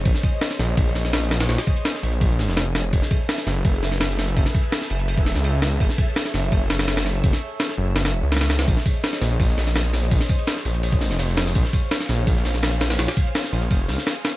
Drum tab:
RD |x---x---x---x---x---x---x---x-x-|x-x-x-x-x---x-x-x---x---x---x---|x---x---x---x---x---x---x---x-x-|x---x-x-x---x-x-x---x---x---x---|
HH |--------------------------------|--------------------------------|--------------------------------|--------------------------------|
TB |--------------------------------|--------------------------------|--------------------------------|--------------------------------|
SD |--o-----o-o-o-------o-o-o---o-o-|o-o-----o-o---------o-o-o---o---|--o-----o-o-o-------o-o-o---o---|--o-----o-o---------o-o-----o---|
BD |o---o-----------o---------------|----o-----------o---------------|o---o-----------o---------------|o---o-------------o-------------|

RD |x---x---x---x---x---x-x-x-x-x-x-|x-------x-------x-x-----xxx-x-x-|x---x---x---x---x---x---x---x-x-|x---x-x-x---x-x-x---x---x---x---|
HH |--------------------------------|--------------------------------|--------------------------------|--x-----------------------------|
TB |--------------------------------|--------------------------------|x---x---x---x---x---x---x---x---|x---x---x---x---x---x---x---x-x-|
SD |--o-----o-o-o-------o-o-o-o-o---|--o-----o-o-----o-o-----ooo-o-o-|--o-----o-o-o-----o-o-o-o---o-o-|--o-----o-o---------o-o-o-o-o-o-|
BD |o---o-----------o---------------|o-------------------------------|o---o-----------o---------------|o---o-------------o-------------|

RD |x---x---x---x---x---x---x---x-x-|x-x-x-x-x---x-x-x---x---x---x---|
HH |--------------------------------|--x-----------------------------|
TB |x---x---x---x---x---x---x---x---|x---x---x---x---x---x---x---x---|
SD |--o-----o-o-o-----o-o-o-o---o-o-|o-o-----o-o---------o-o-o-o-o---|
BD |o---o-----------o---------------|----o-----------o---------------|